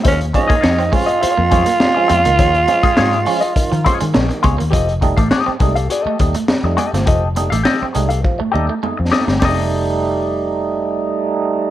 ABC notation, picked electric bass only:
X:1
M:4/4
L:1/16
Q:1/4=102
K:Fmix
V:1 name="Picked electric bass" clef=bass
E,,2 z2 F,,2 z3 F,,2 z3 F,, _D,, | E,,2 z2 _A,,2 z3 E, z E, B,,, z _D,, E,, | F,,,3 A,,, z2 C,,2 z2 E,, z2 F,, z G,,, | F,,,3 A,,, z2 C,,2 z2 E,, z2 F,, z G,,, |
F,,,16 |]